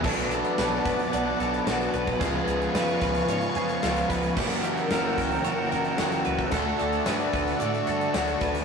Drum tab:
CC |x---------------|----------------|x---------------|----------------|
HH |-xxxx-xxx-xxxxx-|x-xxxxxxxxxxxxxx|-xxxx-xxx-xxxxx-|x-xxxxxxxxxxxxxx|
SD |----o-----o-o---|----o-------o---|----o-----o-o---|----o-----o-o---|
BD |o-----o--------o|o-----o-------o-|o-----o--------o|o-----o-------o-|